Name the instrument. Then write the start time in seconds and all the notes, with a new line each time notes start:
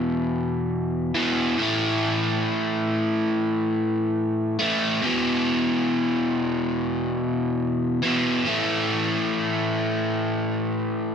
overdriven electric guitar
Already playing: E2 B2 E3
1.15 E2 B2 E3
1.58 A2 E3 A3
4.59 A2 E3 A3
5.01 E2 B2
5.05 E3
8.02 E2 B2 E3
8.45 A2 E3 A3